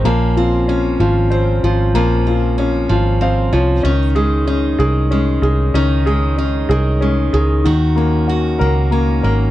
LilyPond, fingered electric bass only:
\new Staff \with { instrumentName = "Fingered electric bass" } { \clef bass \time 6/8 \key bes \minor \tempo 4. = 63 bes,,4. aes,,4 aes,,8 | bes,,4. aes,,4 c,8 | des,4. c,4 c,8 | des,4. c,4 des,8 |
ees,4. des,4 aes,,8 | }